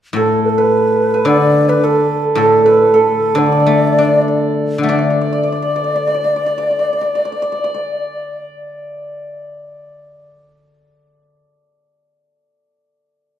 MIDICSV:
0, 0, Header, 1, 4, 480
1, 0, Start_track
1, 0, Tempo, 554017
1, 134, Time_signature, 2, 2, 24, 8
1, 2531, Tempo, 576923
1, 3011, Tempo, 647948
1, 3491, Tempo, 748130
1, 3971, Tempo, 787402
1, 5891, Tempo, 793651
1, 9126, End_track
2, 0, Start_track
2, 0, Title_t, "Hammered dulcimer"
2, 0, Program_c, 0, 15
2, 140, Note_on_c, 0, 69, 64
2, 501, Note_on_c, 0, 71, 62
2, 983, Note_off_c, 0, 71, 0
2, 987, Note_on_c, 0, 71, 64
2, 1085, Note_on_c, 0, 74, 83
2, 1463, Note_off_c, 0, 71, 0
2, 1466, Note_on_c, 0, 71, 69
2, 1587, Note_off_c, 0, 69, 0
2, 1590, Note_on_c, 0, 69, 63
2, 2055, Note_off_c, 0, 69, 0
2, 2059, Note_on_c, 0, 69, 76
2, 2298, Note_off_c, 0, 71, 0
2, 2302, Note_on_c, 0, 71, 67
2, 2541, Note_off_c, 0, 69, 0
2, 2544, Note_on_c, 0, 69, 63
2, 2883, Note_off_c, 0, 74, 0
2, 2886, Note_on_c, 0, 74, 65
2, 2978, Note_off_c, 0, 74, 0
2, 2981, Note_on_c, 0, 74, 42
2, 3025, Note_off_c, 0, 74, 0
2, 3028, Note_on_c, 0, 74, 49
2, 3083, Note_off_c, 0, 74, 0
2, 3086, Note_on_c, 0, 74, 40
2, 3144, Note_off_c, 0, 74, 0
2, 3147, Note_on_c, 0, 74, 43
2, 3228, Note_off_c, 0, 74, 0
2, 3231, Note_on_c, 0, 74, 34
2, 3283, Note_off_c, 0, 74, 0
2, 3286, Note_on_c, 0, 74, 41
2, 3323, Note_off_c, 0, 74, 0
2, 3326, Note_on_c, 0, 74, 35
2, 3404, Note_off_c, 0, 74, 0
2, 3407, Note_on_c, 0, 74, 43
2, 3447, Note_off_c, 0, 74, 0
2, 3450, Note_on_c, 0, 74, 35
2, 3532, Note_off_c, 0, 74, 0
2, 3534, Note_on_c, 0, 74, 42
2, 3575, Note_off_c, 0, 74, 0
2, 3577, Note_on_c, 0, 74, 39
2, 3965, Note_off_c, 0, 74, 0
2, 3968, Note_on_c, 0, 74, 71
2, 4025, Note_off_c, 0, 74, 0
2, 4028, Note_on_c, 0, 74, 51
2, 4096, Note_off_c, 0, 74, 0
2, 4098, Note_on_c, 0, 74, 53
2, 4163, Note_off_c, 0, 74, 0
2, 4166, Note_on_c, 0, 74, 51
2, 4231, Note_off_c, 0, 74, 0
2, 4234, Note_on_c, 0, 74, 57
2, 4269, Note_off_c, 0, 71, 0
2, 4298, Note_off_c, 0, 74, 0
2, 4300, Note_on_c, 0, 74, 48
2, 4352, Note_off_c, 0, 74, 0
2, 4354, Note_on_c, 0, 74, 53
2, 4413, Note_off_c, 0, 74, 0
2, 4415, Note_on_c, 0, 74, 45
2, 4495, Note_off_c, 0, 74, 0
2, 4497, Note_on_c, 0, 74, 55
2, 4545, Note_off_c, 0, 74, 0
2, 4547, Note_on_c, 0, 74, 45
2, 4562, Note_off_c, 0, 69, 0
2, 4616, Note_off_c, 0, 74, 0
2, 4618, Note_on_c, 0, 74, 54
2, 4687, Note_off_c, 0, 74, 0
2, 4690, Note_on_c, 0, 74, 48
2, 4730, Note_off_c, 0, 74, 0
2, 4733, Note_on_c, 0, 74, 54
2, 4790, Note_off_c, 0, 74, 0
2, 4793, Note_on_c, 0, 74, 45
2, 4863, Note_off_c, 0, 74, 0
2, 4865, Note_on_c, 0, 74, 55
2, 4925, Note_off_c, 0, 74, 0
2, 4927, Note_on_c, 0, 74, 48
2, 4995, Note_off_c, 0, 74, 0
2, 4997, Note_on_c, 0, 74, 57
2, 5074, Note_off_c, 0, 74, 0
2, 5076, Note_on_c, 0, 74, 44
2, 5125, Note_off_c, 0, 74, 0
2, 5127, Note_on_c, 0, 74, 50
2, 5209, Note_off_c, 0, 74, 0
2, 5211, Note_on_c, 0, 74, 43
2, 5260, Note_off_c, 0, 74, 0
2, 5262, Note_on_c, 0, 74, 55
2, 5345, Note_off_c, 0, 74, 0
2, 5347, Note_on_c, 0, 74, 49
2, 5405, Note_off_c, 0, 74, 0
2, 5408, Note_on_c, 0, 74, 53
2, 5448, Note_off_c, 0, 74, 0
2, 5450, Note_on_c, 0, 74, 47
2, 5509, Note_off_c, 0, 74, 0
2, 5511, Note_on_c, 0, 74, 55
2, 5569, Note_off_c, 0, 74, 0
2, 5572, Note_on_c, 0, 74, 46
2, 5643, Note_off_c, 0, 74, 0
2, 5645, Note_on_c, 0, 74, 55
2, 5706, Note_off_c, 0, 74, 0
2, 5708, Note_on_c, 0, 74, 53
2, 7199, Note_off_c, 0, 74, 0
2, 9126, End_track
3, 0, Start_track
3, 0, Title_t, "Xiao"
3, 0, Program_c, 1, 77
3, 144, Note_on_c, 1, 69, 68
3, 392, Note_on_c, 1, 71, 79
3, 405, Note_off_c, 1, 69, 0
3, 426, Note_on_c, 1, 69, 67
3, 439, Note_off_c, 1, 71, 0
3, 506, Note_on_c, 1, 71, 80
3, 519, Note_off_c, 1, 69, 0
3, 1099, Note_on_c, 1, 74, 89
3, 1112, Note_off_c, 1, 71, 0
3, 1209, Note_off_c, 1, 74, 0
3, 1215, Note_on_c, 1, 74, 86
3, 1463, Note_on_c, 1, 71, 76
3, 1476, Note_off_c, 1, 74, 0
3, 1601, Note_on_c, 1, 69, 80
3, 1614, Note_off_c, 1, 71, 0
3, 1947, Note_off_c, 1, 69, 0
3, 2078, Note_on_c, 1, 69, 77
3, 2321, Note_on_c, 1, 71, 76
3, 2334, Note_off_c, 1, 69, 0
3, 2554, Note_on_c, 1, 69, 69
3, 2566, Note_off_c, 1, 71, 0
3, 2914, Note_on_c, 1, 74, 85
3, 2926, Note_off_c, 1, 69, 0
3, 3734, Note_off_c, 1, 74, 0
3, 3971, Note_on_c, 1, 74, 71
3, 6148, Note_off_c, 1, 74, 0
3, 9126, End_track
4, 0, Start_track
4, 0, Title_t, "Guzheng"
4, 0, Program_c, 2, 107
4, 112, Note_on_c, 2, 45, 50
4, 1082, Note_on_c, 2, 50, 48
4, 1092, Note_off_c, 2, 45, 0
4, 2039, Note_on_c, 2, 45, 53
4, 2522, Note_off_c, 2, 50, 0
4, 2881, Note_off_c, 2, 45, 0
4, 2887, Note_on_c, 2, 50, 52
4, 3134, Note_on_c, 2, 57, 41
4, 3371, Note_on_c, 2, 62, 40
4, 3892, Note_off_c, 2, 50, 0
4, 3899, Note_on_c, 2, 50, 40
4, 3924, Note_off_c, 2, 57, 0
4, 3932, Note_on_c, 2, 57, 46
4, 3958, Note_off_c, 2, 62, 0
4, 3966, Note_on_c, 2, 62, 41
4, 6859, Note_off_c, 2, 62, 0
4, 7372, Note_off_c, 2, 57, 0
4, 7928, Note_off_c, 2, 50, 0
4, 9126, End_track
0, 0, End_of_file